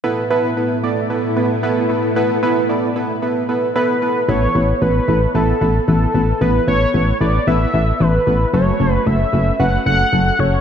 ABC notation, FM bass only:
X:1
M:4/4
L:1/8
Q:1/4=113
K:A
V:1 name="FM bass" clef=bass
z8 | z8 | A,,, A,,, A,,, A,,, A,,, A,,, A,,, A,,, | A,,, A,,, A,,, A,,, A,,, A,,, A,,, A,,, |
F,,, F,,, F,,, F,,, F,,, F,,, F,,, F,,, |]